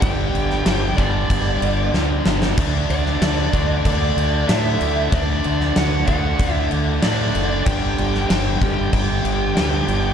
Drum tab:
CC |x-x-x-x-x-x-----|x-x-x-x-x-x-x-x-|x-x-x-x-x-x-x-x-|x-x-x-x-x-x-x-x-|
SD |---oo-------o-oo|---oo-------o---|---oo-------o---|---oo-------o---|
BD |o-----o-o-------|o-----o-o-------|o-----o-o-------|o-----o-o-------|